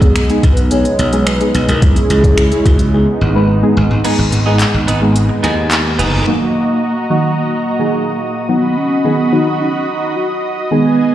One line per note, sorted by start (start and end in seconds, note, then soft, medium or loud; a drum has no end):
0.00 0.29 B1 medium
0.00 4.01 G#3 medium
0.00 0.17 G#3 medium
0.00 1.78 B3 medium
0.00 0.17 B3 medium
0.00 1.78 D#4 medium
0.00 0.17 D#4 medium
0.00 0.39 G#4 loud
0.00 0.17 G#4 medium
0.00 kick loud
0.00 closed hi-hat medium
0.16 finger snap loud
0.16 closed hi-hat medium
0.29 0.52 G#3 medium
0.29 0.52 B3 medium
0.29 0.53 D#4 medium
0.29 0.53 G#4 loud
0.29 closed hi-hat medium
0.43 0.84 B1 loud
0.43 kick medium
0.43 closed hi-hat medium
0.52 0.61 B4 loud
0.57 closed hi-hat medium
0.71 0.94 G#3 medium
0.71 0.94 B3 medium
0.71 0.94 D#4 medium
0.71 0.94 G#4 medium
0.71 1.28 C#5 loud
0.71 closed hi-hat medium
0.85 closed hi-hat medium
0.99 1.40 B1 medium
0.99 closed hi-hat medium
1.13 1.28 G#3 medium
1.13 1.28 B3 medium
1.13 1.28 D#4 medium
1.13 1.28 G#4 medium
1.13 closed hi-hat medium
1.26 1.70 B4 loud
1.26 finger snap loud
1.26 closed hi-hat medium
1.40 1.63 G#3 medium
1.40 1.63 B3 medium
1.40 1.64 D#4 medium
1.40 1.64 G#4 medium
1.40 closed hi-hat soft
1.54 1.65 B1 medium
1.54 closed hi-hat medium
1.68 1.99 B1 loud
1.68 1.84 A#4 medium
1.68 closed hi-hat medium
1.82 2.05 G#3 medium
1.82 2.05 C#4 medium
1.82 2.92 C#4 medium
1.82 2.05 E4 medium
1.82 2.92 E4 medium
1.82 2.67 G#4 loud
1.82 2.05 G#4 medium
1.82 kick loud
1.82 closed hi-hat loud
1.96 closed hi-hat medium
2.10 2.51 C#2 medium
2.10 closed hi-hat medium
2.24 2.39 G#3 medium
2.24 2.39 C#4 medium
2.24 2.39 E4 medium
2.24 2.39 G#4 medium
2.24 kick loud
2.24 closed hi-hat medium
2.38 finger snap loud
2.38 closed hi-hat medium
2.52 2.75 G#3 medium
2.52 2.75 C#4 medium
2.52 2.75 E4 medium
2.52 2.75 G#4 medium
2.52 closed hi-hat medium
2.66 3.06 C#2 loud
2.66 2.93 F#4 medium
2.66 kick medium
2.66 closed hi-hat medium
2.79 closed hi-hat medium
2.93 3.16 G#3 medium
2.93 4.04 B3 medium
2.93 3.16 B3 medium
2.93 4.03 D#4 medium
2.93 3.16 D#4 medium
2.93 3.45 G#4 medium
2.93 3.16 G#4 medium
3.21 3.62 G#1 medium
3.35 3.50 G#3 medium
3.35 3.50 B3 medium
3.35 3.50 D#4 medium
3.35 3.51 B4 medium
3.63 3.86 G#3 medium
3.63 3.86 B3 medium
3.63 3.86 D#4 medium
3.63 3.86 G#4 loud
3.77 3.87 G#1 medium
3.91 4.01 G#1 loud
4.04 4.27 G#3 medium
4.04 6.25 G#3 medium
4.04 4.19 B3 medium
4.04 4.27 B3 medium
4.04 6.25 B3 medium
4.04 4.27 D#4 medium
4.04 6.25 D#4 medium
4.04 4.18 D#4 medium
4.04 4.28 G#4 loud
4.04 4.17 G#4 medium
4.04 closed hi-hat medium
4.04 crash medium
4.18 4.29 G#1 medium
4.18 muted clean electric guitar stroke medium
4.32 4.63 G#1 medium
4.32 muted clean electric guitar stroke soft
4.32 closed hi-hat medium
4.46 4.77 G#3 medium
4.46 4.77 B3 medium
4.46 4.58 B3 medium
4.46 4.77 D#4 medium
4.46 4.57 D#4 medium
4.46 4.57 G#4 medium
4.46 4.77 G#4 loud
4.60 clap loud
4.60 clap medium
4.60 closed hi-hat medium
4.74 4.84 G#1 medium
4.74 muted clean electric guitar stroke medium
4.88 5.29 G#1 medium
4.88 5.02 B3 medium
4.88 5.01 D#4 medium
4.88 5.00 G#4 loud
4.88 closed hi-hat medium
5.01 5.63 G#3 medium
5.01 5.63 B3 medium
5.01 5.63 D#4 medium
5.01 5.63 G#4 loud
5.01 muted clean electric guitar stroke soft
5.16 closed hi-hat medium
5.16 reverse cymbal medium
5.29 muted clean electric guitar stroke soft
5.43 6.01 D#2 medium
5.43 5.57 B3 medium
5.43 5.57 D#4 medium
5.43 5.56 G#4 loud
5.43 closed hi-hat medium
5.57 muted clean electric guitar stroke soft
5.71 muted clean electric guitar stroke soft
5.71 clap loud
5.71 closed hi-hat medium
5.85 muted clean electric guitar stroke medium
5.99 6.19 F#1 loud
5.99 6.12 B3 medium
5.99 6.12 D#4 medium
5.99 6.11 G#4 medium
5.99 closed hi-hat medium
6.12 6.24 B3 soft
6.12 6.24 D#4 medium
6.12 6.24 G#4 medium
6.27 6.72 D#3 medium
6.27 6.72 F#3 medium
6.27 7.06 A#3 loud
6.27 6.73 A#3 medium
6.27 6.73 D#4 medium
6.27 8.47 F#4 medium
6.27 6.73 F#4 medium
6.27 8.47 D#5 medium
6.27 8.47 A#5 medium
6.27 11.15 D#6 medium
7.10 7.48 D#3 medium
7.10 7.48 F#3 medium
7.10 7.48 A#3 medium
7.10 7.48 D#4 medium
7.10 7.48 F#4 loud
7.38 8.51 A#3 medium
7.79 8.18 D#3 medium
7.79 8.18 F#3 medium
7.79 8.18 A#3 medium
7.79 8.18 D#4 medium
7.79 8.18 G#4 medium
8.49 8.79 D#3 medium
8.49 8.79 F#3 medium
8.49 8.79 B3 medium
8.49 8.79 B3 loud
8.49 8.80 D#4 medium
8.49 10.69 F#4 medium
8.49 8.80 F#4 medium
8.49 11.15 D#5 medium
8.49 10.69 B5 medium
8.77 9.04 C#4 medium
9.04 9.20 D#3 medium
9.04 9.20 F#3 medium
9.04 9.20 B3 medium
9.04 9.34 B3 loud
9.04 9.20 D#4 medium
9.04 9.20 G#4 medium
9.32 9.93 D#3 medium
9.32 9.93 F#3 medium
9.32 9.93 B3 medium
9.32 9.93 D#4 medium
9.32 9.60 D#4 loud
9.32 9.93 F#4 medium
9.60 9.73 C#4 loud
9.88 10.18 D#4 loud
10.16 10.58 F#4 loud
10.71 11.15 D#3 medium
10.71 11.15 G#3 medium
10.71 11.15 B3 medium
10.71 11.15 B3 loud
10.71 11.15 D#4 medium
10.71 11.15 G#4 medium
10.71 11.15 G#5 medium